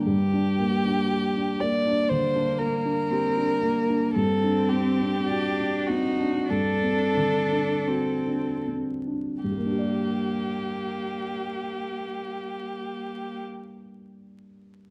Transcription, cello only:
2.09 3.11 A#3 soft
3.09 3.61 C4 soft
3.61 4.16 A#3 soft
4.14 5.28 C4 soft
5.29 5.89 D4 soft
5.88 6.49 D#4 soft
6.49 7.89 D4 medium
7.87 8.67 C4 soft
9.44 13.42 A#3 soft

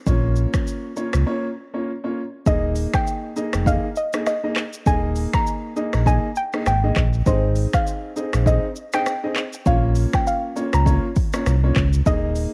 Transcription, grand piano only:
0.06 0.90 A#3 medium
0.06 0.90 C#4 medium
0.06 0.90 F4 medium
0.06 0.91 C#5 medium
0.96 1.24 A#3 medium
0.96 1.24 C#4 medium
0.96 1.25 F4 medium
0.96 1.25 C#5 medium
1.26 1.46 A#3 medium
1.26 1.46 C#4 medium
1.26 1.46 F4 medium
1.26 1.46 C#5 loud
1.73 1.90 A#3 medium
1.73 1.90 C#4 medium
1.73 1.90 F4 medium
1.73 1.90 C#5 medium
2.04 2.20 A#3 medium
2.04 2.20 C#4 medium
2.04 2.20 F4 medium
2.04 2.20 C#5 medium
2.46 3.30 A#3 medium
2.46 3.30 D#4 medium
2.46 3.30 G#4 medium
2.46 3.30 D#5 loud
3.36 3.64 A#3 medium
3.36 3.64 D#4 medium
3.36 3.64 G#4 medium
3.36 3.64 D#5 medium
3.66 3.86 A#3 medium
3.66 3.86 D#4 medium
3.66 3.86 G#4 medium
3.66 3.86 D#5 loud
4.13 4.30 A#3 medium
4.13 4.30 D#4 medium
4.13 4.30 G#4 medium
4.13 4.30 D#5 medium
4.43 4.60 A#3 medium
4.43 4.60 D#4 medium
4.43 4.60 G#4 medium
4.43 4.60 D#5 medium
4.86 5.70 A#3 medium
4.86 5.70 D#4 medium
4.86 5.70 G#4 medium
4.86 5.70 D#5 loud
5.76 6.04 A#3 medium
5.76 6.04 D#4 medium
5.76 6.04 G#4 medium
5.76 6.04 D#5 medium
6.06 6.26 A#3 medium
6.06 6.26 D#4 medium
6.06 6.26 G#4 medium
6.06 6.26 D#5 loud
6.53 6.69 A#3 medium
6.53 6.70 D#4 medium
6.53 6.70 G#4 medium
6.53 6.70 D#5 medium
6.83 6.99 A#3 medium
6.83 6.99 D#4 medium
6.83 7.00 G#4 medium
6.83 7.00 D#5 medium
7.26 8.10 C4 medium
7.26 8.10 D#4 medium
7.26 8.10 G#4 medium
7.26 8.10 D#5 loud
8.16 8.44 C4 medium
8.16 8.44 D#4 medium
8.16 8.44 G#4 medium
8.16 8.44 D#5 medium
8.46 8.66 C4 loud
8.46 8.66 D#4 medium
8.46 8.66 G#4 medium
8.46 8.66 D#5 loud
8.94 9.10 C4 medium
8.94 9.10 D#4 medium
8.94 9.10 G#4 medium
8.94 9.10 D#5 medium
9.23 9.40 C4 medium
9.23 9.40 D#4 medium
9.23 9.40 G#4 medium
9.23 9.40 D#5 medium
9.66 10.50 A#3 medium
9.66 10.50 C#4 medium
9.66 10.50 F4 medium
9.66 10.50 C#5 loud
10.56 10.84 A#3 medium
10.56 10.84 C#4 medium
10.56 10.84 F4 medium
10.56 10.84 C#5 medium
10.86 11.06 A#3 medium
10.86 11.06 C#4 medium
10.86 11.06 F4 medium
10.86 11.06 C#5 loud
11.33 11.49 A#3 medium
11.33 11.50 C#4 medium
11.33 11.50 F4 medium
11.33 11.50 C#5 medium
11.63 11.79 A#3 medium
11.63 11.80 C#4 medium
11.63 11.80 F4 medium
11.63 11.80 C#5 medium
12.06 12.54 A#3 medium
12.06 12.54 D#4 medium
12.06 12.54 G#4 medium
12.06 12.54 D#5 loud

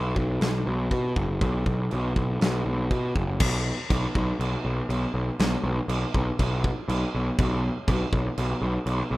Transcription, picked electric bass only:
0.00 0.13 B1 medium
0.16 0.38 B1 medium
0.41 0.63 B1 medium
0.66 0.88 B1 medium
0.91 1.13 B2 medium
1.16 1.38 F#1 medium
1.42 1.63 B1 medium
1.66 1.88 B1 medium
1.93 2.14 B1 medium
2.16 2.38 B1 medium
2.41 2.63 B1 medium
2.66 2.88 B1 medium
2.91 3.13 B2 medium
3.16 3.37 F#1 medium
3.40 3.71 B1 medium
3.90 4.05 B1 medium
4.16 4.31 B1 medium
4.39 4.55 B1 loud
4.65 4.80 B1 loud
4.89 5.04 B1 loud
5.14 5.29 B1 medium
5.40 5.55 B1 loud
5.64 5.79 B1 loud
5.88 6.04 B1 loud
6.15 6.29 B1 loud
6.39 6.69 B1 loud
6.88 7.03 B1 loud
7.15 7.29 B1 medium
7.39 7.69 B1 loud
7.88 8.03 B1 loud
8.13 8.28 B1 loud
8.38 8.53 B1 medium
8.62 8.77 B1 medium
8.86 9.01 B1 loud
9.11 9.17 B1 medium

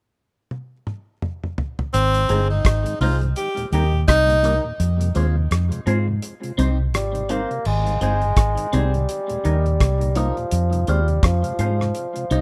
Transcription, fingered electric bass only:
1.94 2.26 G#1 loud
2.30 2.61 G1 medium
2.65 2.84 G#1 medium
3.01 3.32 C2 loud
3.72 4.04 D#2 medium
4.09 4.59 C2 medium
4.80 5.11 F2 loud
5.16 5.47 D#2 medium
5.51 5.70 F2 medium
5.87 6.18 G#2 medium
6.58 6.94 C2 medium
6.94 7.45 G#1 medium
7.66 7.98 G#1 medium
8.02 8.33 G1 loud
8.37 8.56 G#1 medium
8.73 9.05 C2 medium
9.45 9.77 D#2 medium
9.81 10.31 C2 medium
10.52 10.84 F2 loud
10.88 11.20 D#2 medium
11.23 11.42 F2 medium
11.59 11.91 G#2 medium
12.31 12.41 C2 medium

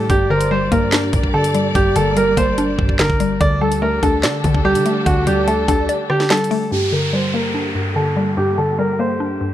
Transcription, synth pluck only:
0.10 1.12 G2 loud
0.30 1.33 D3 medium
0.51 1.53 G3 medium
0.72 1.75 A#3 medium
0.92 1.96 D4 loud
1.13 1.74 G2 medium
1.34 1.95 D3 medium
1.55 2.15 G3 medium
1.75 2.78 G2 loud
1.96 2.98 D3 medium
2.17 3.19 G3 medium
2.37 3.41 A#3 medium
2.58 3.41 D4 medium
2.79 3.41 G2 medium
2.99 3.39 D3 medium
3.20 3.41 G3 medium
3.41 4.43 D3 loud
3.61 4.64 G3 medium
3.82 4.84 A3 medium
4.03 5.06 D4 medium
4.24 5.27 D5 medium
4.44 5.05 D3 medium
4.65 5.26 G3 medium
4.86 5.46 A3 medium
5.06 6.09 D3 loud
5.27 6.29 G3 medium
5.48 6.50 A3 medium
5.68 6.72 D4 medium
5.89 6.72 D5 loud
6.10 6.72 D3 medium
6.30 6.72 G3 medium
6.51 6.72 A3 medium
6.72 7.74 G2 medium
6.92 7.95 D3 medium
7.13 8.15 G3 medium
7.34 8.37 A#3 medium
7.54 8.58 D4 medium
7.75 8.36 G2 medium
7.96 8.57 D3 medium
8.17 8.77 G3 medium
8.37 9.40 G2 medium
8.58 9.54 D3 medium
8.79 9.54 G3 medium
8.99 9.54 A#3 medium
9.20 9.54 D4 medium
9.41 9.54 G2 medium

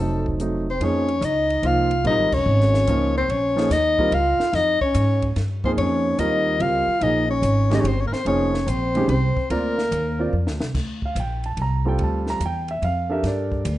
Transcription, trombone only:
0.71 0.84 C4 medium
0.83 1.25 C#4 medium
1.23 1.68 D#4 medium
1.66 2.06 F4 medium
2.07 2.37 D#4 medium
2.36 3.17 C#4 medium
3.17 3.33 C4 medium
3.32 3.75 C#4 medium
3.73 4.16 D#4 medium
4.15 4.56 F4 medium
4.54 4.81 D#4 medium
4.83 5.29 C#4 medium
5.65 5.71 C4 medium
5.79 6.21 C#4 medium
6.20 6.62 D#4 medium
6.61 7.04 F4 medium
7.02 7.28 D#4 medium
7.28 7.75 C#4 medium
7.73 7.82 D#4 medium
7.81 7.89 C#4 medium
7.88 8.01 C4 medium
7.99 8.04 C#4 medium
8.05 8.14 A#3 medium
8.12 8.24 C4 medium
8.25 8.69 C#4 medium
8.68 9.09 C4 medium
9.09 9.48 C4 medium
9.51 10.30 A#3 medium

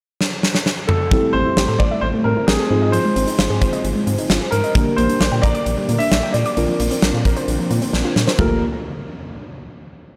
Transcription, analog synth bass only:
1.11 1.21 A1 loud
1.34 1.43 A1 loud
1.57 1.66 A1 loud
1.68 1.77 A2 medium
1.80 1.89 A1 loud
2.02 2.12 A1 loud
2.25 2.34 A2 loud
2.48 2.57 A1 loud
2.71 2.98 G#2 loud
3.16 3.25 G#1 loud
3.39 3.48 G#1 loud
3.50 3.59 G#2 loud
3.62 3.71 G#1 loud
3.84 3.93 G#1 loud
4.07 4.16 G#2 loud
4.30 4.39 G#1 loud
4.52 4.62 G#2 loud
4.75 4.84 A#1 loud
4.98 5.07 A#1 loud
5.21 5.30 A#1 loud
5.32 5.41 A#2 loud
5.43 5.53 A#1 loud
5.66 5.75 A#1 loud
5.89 5.98 A#2 loud
6.11 6.21 A#1 loud
6.34 6.43 A#2 loud
6.57 6.66 A#1 loud
6.80 6.89 A#1 loud
7.02 7.12 A#1 loud
7.14 7.23 A#2 loud
7.25 7.34 A#1 loud
7.48 7.57 A#1 loud
7.71 7.80 A#2 loud
7.93 8.03 A#1 loud
8.16 8.25 A#2 loud
8.39 8.60 G1 loud

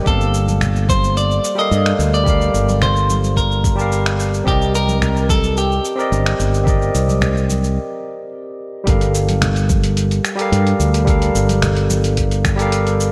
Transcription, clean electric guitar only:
0.07 0.89 A4 medium
0.90 1.17 C5 medium
1.17 1.56 D5 medium
1.59 2.10 D#5 loud
2.14 2.82 D5 loud
2.82 3.37 C5 medium
3.37 4.15 A#4 medium
4.48 4.75 G4 loud
4.75 5.26 A#4 loud
5.30 5.57 A4 loud
5.58 8.29 G4 medium

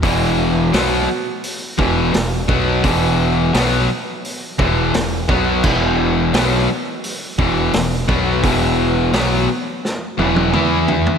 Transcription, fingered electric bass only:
0.03 0.69 E1 medium
0.74 1.06 B1 medium
1.79 2.11 E1 medium
2.15 2.47 E1 medium
2.49 2.81 B1 medium
2.84 3.50 E1 medium
3.55 3.87 B1 medium
4.59 4.92 E1 medium
4.94 5.27 E1 medium
5.29 5.61 B1 medium
5.64 6.30 E1 loud
6.34 6.66 B1 loud
7.38 7.71 E1 medium
7.74 8.07 E1 medium
8.09 8.41 B1 medium
8.44 9.10 E1 loud
9.13 9.46 B1 medium
10.19 10.52 E1 medium
10.54 11.18 E2 medium

